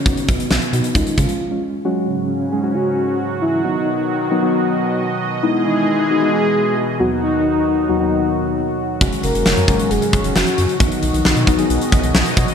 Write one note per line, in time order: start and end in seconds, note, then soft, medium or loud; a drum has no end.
0.00 0.29 C#4 loud
0.05 0.14 B1 loud
0.05 0.51 B3 medium
0.05 0.51 D#4 medium
0.05 0.51 F#4 medium
0.05 kick loud
0.05 closed hi-hat medium
0.17 closed hi-hat medium
0.28 0.37 B1 medium
0.28 0.72 B3 loud
0.28 kick medium
0.28 closed hi-hat medium
0.40 closed hi-hat medium
0.50 0.59 B1 loud
0.50 snare loud
0.62 closed hi-hat soft
0.73 0.81 B2 loud
0.73 0.96 B3 medium
0.73 0.95 B3 medium
0.73 0.95 D#4 medium
0.73 0.95 F#4 medium
0.73 closed hi-hat medium
0.84 closed hi-hat medium
0.95 1.04 C#2 loud
0.95 1.13 G#3 medium
0.95 1.13 C#4 medium
0.95 1.19 D#4 loud
0.95 1.13 F4 medium
0.95 kick medium
0.95 closed hi-hat medium
1.07 closed hi-hat soft
1.17 1.26 C#3 loud
1.17 1.40 G#3 medium
1.17 1.40 C#4 medium
1.17 1.62 F4 medium
1.17 1.40 F4 medium
1.17 kick medium
1.17 closed hi-hat medium
1.29 closed hi-hat medium
1.51 1.74 G#3 medium
1.51 1.74 C#4 medium
1.51 1.74 F4 medium
1.85 3.62 G#2 medium
1.85 3.62 C#3 medium
1.85 2.31 F#3 medium
1.85 5.39 F#3 medium
1.85 2.31 G#3 medium
1.85 2.30 C#4 medium
1.85 3.62 C#4 medium
1.85 5.39 F#4 loud
1.85 2.31 F#4 loud
2.07 2.76 C#4 loud
2.52 2.60 F#3 medium
2.52 2.60 G#3 medium
2.52 2.60 C#4 medium
2.52 2.60 G#4 medium
2.63 3.24 F#3 medium
2.63 3.24 G#3 medium
2.63 3.24 C#4 medium
2.63 3.24 F#4 medium
2.74 3.19 F#4 loud
3.41 3.62 E4 loud
3.64 8.97 B2 medium
3.64 5.41 D#3 medium
3.64 4.10 F#3 medium
3.64 4.10 B3 medium
3.64 4.10 D#4 medium
3.64 4.27 D#4 loud
3.64 4.10 F#4 medium
3.64 6.96 D#5 medium
4.31 4.39 F#3 medium
4.31 4.39 B3 medium
4.31 4.39 D#4 medium
4.31 4.39 F#4 loud
4.42 5.03 F#3 medium
4.42 5.03 B3 medium
4.42 5.03 D#4 medium
4.42 5.03 F#4 loud
5.43 6.98 E3 medium
5.43 6.98 G#3 medium
5.43 5.89 G#3 medium
5.43 5.89 B3 medium
5.43 5.89 D#4 medium
5.43 5.89 E4 loud
5.43 6.98 G#4 loud
5.65 6.28 D#4 loud
6.10 6.18 G#3 medium
6.10 6.18 B3 medium
6.10 6.18 D#4 medium
6.10 6.18 F#4 medium
6.21 6.82 G#3 medium
6.21 6.82 B3 medium
6.21 6.82 D#4 medium
6.21 6.82 F#4 medium
6.32 6.74 G#4 loud
7.00 8.99 D#2 medium
7.00 7.71 D#2 medium
7.00 8.99 D#3 medium
7.00 12.54 F#3 medium
7.00 7.71 F#3 medium
7.00 7.71 B3 medium
7.00 8.99 D#4 medium
7.00 7.71 D#4 medium
7.00 7.10 F#4 loud
7.00 12.54 F#4 loud
7.00 7.71 F#4 medium
7.22 7.85 D#4 loud
7.89 7.97 D#2 medium
7.89 7.97 F#3 medium
7.89 7.97 B3 medium
7.89 7.97 D#4 medium
7.89 7.97 F#4 loud
8.01 8.62 D#2 medium
8.01 8.62 F#3 medium
8.01 8.62 B3 medium
8.01 8.62 D#4 medium
8.01 8.62 F#4 loud
9.01 9.10 F#1 loud
9.01 10.79 G#2 medium
9.01 10.79 C#3 medium
9.01 9.47 F#3 medium
9.01 9.47 G#3 medium
9.01 9.47 C#4 medium
9.01 10.79 C#4 medium
9.01 9.47 F#4 loud
9.01 kick loud
9.01 closed hi-hat medium
9.13 closed hi-hat medium
9.23 9.32 F#1 loud
9.23 9.92 A#4 loud
9.23 closed hi-hat medium
9.35 9.43 F#1 loud
9.35 closed hi-hat medium
9.46 9.55 F#1 loud
9.46 snare loud
9.57 9.66 F#2 loud
9.57 closed hi-hat medium
9.68 9.77 F#1 loud
9.68 9.76 F#3 medium
9.68 9.76 G#3 medium
9.68 9.76 C#4 medium
9.68 9.76 F#4 medium
9.68 kick loud
9.68 closed hi-hat medium
9.79 10.41 F#3 medium
9.79 10.40 G#3 medium
9.79 10.41 C#4 medium
9.79 10.40 F#4 medium
9.79 closed hi-hat medium
9.91 9.99 F#1 loud
9.91 10.35 G#4 loud
9.91 closed hi-hat medium
10.02 closed hi-hat medium
10.13 10.22 F#1 loud
10.13 kick loud
10.13 closed hi-hat medium
10.24 10.33 F#1 loud
10.24 closed hi-hat medium
10.35 10.44 F#1 loud
10.35 10.77 F#4 loud
10.35 snare loud
10.47 closed hi-hat medium
10.58 10.67 F#2 loud
10.58 closed hi-hat medium
10.69 closed hi-hat soft
10.80 10.89 B1 loud
10.80 12.54 B2 medium
10.80 12.54 D#3 medium
10.80 11.26 F#3 medium
10.80 11.26 B3 medium
10.80 11.26 D#4 medium
10.80 12.11 D#4 loud
10.80 11.26 F#4 medium
10.80 12.54 D#5 medium
10.80 kick loud
10.80 closed hi-hat medium
10.92 closed hi-hat medium
11.03 11.11 B1 loud
11.03 closed hi-hat medium
11.14 11.22 B1 loud
11.14 closed hi-hat medium
11.25 11.34 B1 loud
11.25 snare loud
11.36 11.45 B2 loud
11.36 closed hi-hat medium
11.47 11.56 B1 loud
11.47 11.55 F#3 medium
11.47 11.55 B3 medium
11.47 11.55 D#4 medium
11.47 11.55 F#4 loud
11.47 kick loud
11.47 closed hi-hat medium
11.59 12.20 F#3 medium
11.59 12.20 B3 medium
11.59 12.20 D#4 medium
11.59 12.20 G#4 loud
11.59 closed hi-hat medium
11.70 11.78 B1 loud
11.70 closed hi-hat medium
11.81 closed hi-hat medium
11.92 12.01 B1 loud
11.92 kick loud
11.92 closed hi-hat medium
12.03 12.12 B1 loud
12.03 closed hi-hat medium
12.15 12.23 B1 loud
12.15 snare loud
12.26 closed hi-hat medium
12.37 12.46 B2 loud
12.37 kick loud
12.37 closed hi-hat medium
12.48 closed hi-hat medium